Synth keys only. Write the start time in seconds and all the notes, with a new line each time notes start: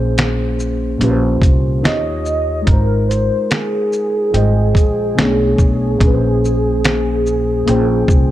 Already playing: A#2 A#3 C#4 G#4 C5
0.98 A#2 A#3 C#4 F4
1.03 G4 B4
1.10 C5
1.81 D#3 D#4 F4
1.85 G4 C#5
2.62 G#3 D#4
2.67 F4 A#4
2.73 C5
4.31 G3 F4 G5
4.35 G#3 C5 D#5
5.15 B2 B3 C#4
5.19 A3 C#5
5.24 D4
5.95 A#2 A#3
6.01 C#4 G#4
6.06 B4
6.13 C5
7.65 A#2 A#3 C#4 F4
7.69 C5 G5